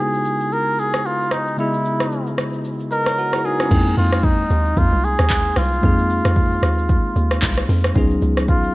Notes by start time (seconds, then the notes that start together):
Already playing: C#3 G#3 B3 D#4 E4 F#4
0.00 G#4
0.14 shaker
0.25 shaker
0.41 shaker
0.52 A#4, shaker
0.79 G#4, shaker
0.94 cross-stick, shaker
1.05 F4, shaker
1.20 shaker
1.31 D#4, cross-stick, shaker
1.47 shaker
1.57 C#3 G#3 B3 E4 G#4 D#5, shaker
1.74 shaker
1.85 shaker
2.00 cross-stick, shaker
2.12 shaker
2.27 shaker
2.38 cross-stick, shaker
2.54 shaker
2.65 shaker
2.80 shaker
2.91 A#4 B4 D#5, shaker
3.06 A#4 C#5, cross-stick, shaker
3.18 F#4 A#4 F#5, shaker
3.33 E4 G#4, cross-stick, shaker
3.45 D#4 F#4 G#4 A#5, shaker
3.60 C#4 E4, cross-stick, shaker
3.69 F2 G#3 A#3 C4 D#4 G5, kick, crash, shaker
3.86 shaker
3.97 F2 F4, shaker
4.13 cross-stick, shaker
4.24 D#4, kick, shaker
4.39 shaker
4.50 D#2, shaker
4.66 shaker
4.77 F2 F4, kick, shaker
4.93 C2
5.04 G#4, shaker
5.19 D#2, cross-stick, shaker
5.30 kick, clap, shaker
5.45 shaker
5.56 C2 F4, cross-stick, open hi-hat, shaker
5.72 shaker
5.82 F2 G#3 A#3 C4 D#4 G#4, kick, shaker
5.98 shaker
6.10 shaker
6.25 F2, cross-stick, shaker
6.36 kick, shaker
6.52 shaker
6.62 D#2, cross-stick, shaker
6.78 shaker
6.89 kick, shaker
7.16 D#2, shaker
7.31 cross-stick, shaker
7.42 C2, kick, clap, shaker
7.57 cross-stick, shaker
7.69 F2, open hi-hat, shaker
7.84 cross-stick, shaker
7.94 C#2 F#3 B3 C#4 D#4 G#4, kick, shaker
8.11 shaker
8.22 C#2, shaker
8.37 cross-stick, shaker
8.48 F4, kick, shaker
8.64 shaker